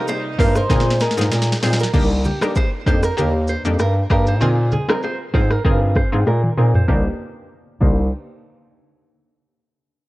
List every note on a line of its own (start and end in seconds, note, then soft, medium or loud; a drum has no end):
0.00 0.66 C3 medium
0.00 0.69 G3 medium
0.00 1.91 D#4 medium
0.08 0.22 C5 medium
0.08 high bongo medium
0.08 shaker medium
0.39 0.62 G2 medium
0.39 0.54 A#3 medium
0.39 0.54 C4 medium
0.39 0.54 F4 medium
0.39 0.54 G4 medium
0.39 0.59 A#4 loud
0.39 0.53 C5 medium
0.39 kick medium
0.39 open hi-hat medium
0.39 low bongo medium
0.39 shaker soft
0.55 0.67 A#4 medium
0.55 1.04 C5 loud
0.55 cross-stick medium
0.55 shaker medium
0.69 1.06 A#2 loud
0.69 1.92 A#2 medium
0.69 1.92 G#3 medium
0.69 1.14 C4 medium
0.69 1.14 D#4 medium
0.69 1.14 F4 medium
0.69 1.14 G#4 loud
0.69 0.84 A#4 medium
0.69 kick loud
0.69 snare medium
0.69 low conga medium
0.69 shaker medium
0.80 snare medium
0.91 snare medium
1.00 1.15 G#4 medium
1.00 1.63 A#4 loud
1.00 snare medium
1.00 shaker medium
1.11 snare medium
1.17 1.28 G#2 medium
1.17 1.30 C4 medium
1.17 1.30 D#4 medium
1.17 1.30 F4 medium
1.17 1.31 G#4 medium
1.17 snare medium
1.17 low bongo medium
1.17 shaker medium
1.32 1.55 A#2 medium
1.32 1.46 A#4 medium
1.32 snare medium
1.32 high bongo medium
1.32 shaker medium
1.42 snare medium
1.52 snare loud
1.62 1.86 A#2 medium
1.62 1.78 C4 medium
1.62 1.78 D#4 medium
1.62 1.78 F4 medium
1.62 1.78 G#4 medium
1.62 1.77 C5 medium
1.62 snare medium
1.62 open hi-hat medium
1.62 high bongo medium
1.62 shaker soft
1.73 snare loud
1.79 1.91 A#4 medium
1.79 high bongo medium
1.79 shaker medium
1.83 snare loud
1.93 2.30 C2 loud
1.93 2.37 A#3 medium
1.93 2.37 D4 medium
1.93 2.38 D#4 medium
1.93 2.38 G4 loud
1.93 2.08 A#4 medium
1.93 kick loud
1.93 crash medium
1.93 low conga medium
1.93 shaker medium
2.24 2.39 G4 medium
2.24 low bongo medium
2.24 low conga medium
2.24 shaker medium
2.41 2.54 A#3 medium
2.41 2.54 D4 medium
2.41 2.54 D#4 medium
2.41 2.54 G4 medium
2.41 2.53 A#4 medium
2.41 cross-stick loud
2.41 low bongo medium
2.41 shaker medium
2.55 2.69 C5 medium
2.55 kick loud
2.55 high bongo medium
2.55 shaker medium
2.86 3.10 F2 medium
2.86 3.02 A#3 medium
2.86 3.02 D4 medium
2.86 3.02 D#4 medium
2.86 3.02 G4 medium
2.86 3.00 C5 medium
2.86 kick medium
2.86 low bongo medium
2.86 shaker soft
3.03 3.15 A#4 medium
3.03 cross-stick medium
3.03 shaker medium
3.17 3.54 D#2 medium
3.17 3.61 A#3 medium
3.17 3.61 D4 medium
3.17 3.61 D#4 medium
3.17 3.61 G4 loud
3.17 3.31 A#4 medium
3.17 low conga medium
3.17 shaker medium
3.47 3.62 C5 medium
3.47 shaker medium
3.65 3.76 F2 medium
3.65 3.78 A#3 medium
3.65 3.78 D4 medium
3.65 3.78 D#4 medium
3.65 3.78 G4 medium
3.65 low bongo medium
3.65 shaker medium
3.79 4.03 G2 loud
3.79 3.93 A#4 medium
3.79 cross-stick medium
3.79 high bongo medium
3.79 shaker medium
4.10 4.42 G2 loud
4.10 4.25 A#3 medium
4.10 4.25 D4 medium
4.10 4.25 D#4 medium
4.10 4.26 G4 medium
4.10 4.24 A#4 medium
4.10 kick medium
4.10 cross-stick medium
4.10 shaker soft
4.27 4.42 C5 medium
4.27 shaker medium
4.41 4.77 A#2 loud
4.41 4.85 C4 medium
4.41 4.85 D#4 medium
4.41 4.85 F4 medium
4.41 4.85 G#4 loud
4.41 4.55 A#4 medium
4.41 low conga medium
4.41 shaker medium
4.72 4.86 G#4 medium
4.72 low bongo medium
4.72 low conga medium
4.72 shaker medium
4.89 5.01 C4 medium
4.89 5.02 D#4 medium
4.89 5.02 F4 medium
4.89 5.02 G#4 medium
4.89 5.00 A#4 medium
4.89 cross-stick loud
4.89 low bongo medium
4.89 shaker medium
5.03 5.17 C5 medium
5.03 high bongo medium
5.03 shaker medium
5.33 5.57 G#2 medium
5.33 5.49 C4 medium
5.33 5.49 D#4 medium
5.33 5.49 F4 medium
5.33 5.49 G#4 medium
5.33 5.51 C5 medium
5.33 kick medium
5.33 open hi-hat medium
5.33 low bongo medium
5.33 shaker soft
5.50 5.62 A#4 medium
5.50 cross-stick medium
5.50 shaker medium
5.64 6.01 G2 loud
5.64 6.08 C4 loud
5.64 6.08 D#4 medium
5.64 6.09 F4 medium
5.64 6.09 G#4 loud
5.64 5.79 A#4 medium
5.64 kick loud
5.64 low conga medium
5.64 shaker medium
5.95 6.09 C5 medium
5.95 kick medium
5.95 cross-stick medium
5.95 shaker medium
6.12 6.23 G#2 medium
6.12 6.25 C4 medium
6.12 6.25 D#4 medium
6.12 6.25 F4 medium
6.12 6.25 G#4 medium
6.12 low bongo medium
6.12 shaker medium
6.27 6.50 A#2 loud
6.27 6.40 A#4 medium
6.27 high tom medium
6.27 high bongo medium
6.27 shaker medium
6.44 mid tom medium
6.57 6.81 A#2 loud
6.57 6.73 C4 medium
6.57 6.73 D#4 medium
6.57 6.73 F4 medium
6.57 6.73 G#4 medium
6.57 6.71 A#4 medium
6.57 mid tom medium
6.57 open hi-hat medium
6.57 shaker soft
6.74 6.86 C5 medium
6.74 floor tom loud
6.74 shaker medium
6.88 7.07 C2 loud
6.88 7.06 A#3 medium
6.88 7.07 D4 medium
6.88 7.07 D#4 medium
6.88 7.07 G4 loud
6.88 7.07 C5 medium
6.88 kick loud
6.88 snare medium
6.88 low conga medium
7.81 8.10 C2 medium
7.81 8.04 A#3 medium
7.81 8.05 D4 medium
7.81 8.05 D#4 medium
7.81 8.05 G4 loud
7.81 8.10 C5 medium
7.81 kick loud
7.81 crash medium
7.81 low conga medium